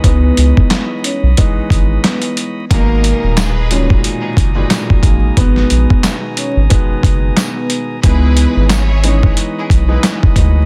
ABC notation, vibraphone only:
X:1
M:4/4
L:1/16
Q:"Swing 16ths" 1/4=90
K:G#m
V:1 name="Vibraphone"
[B,B]4 z2 [Cc] z4 z [B,B]2 z2 | [A,A]4 z2 [Cc] z8 z | [B,B]4 z2 [Cc] z4 z [B,B]2 z2 | [B,B]4 z2 [Cc] z8 z |]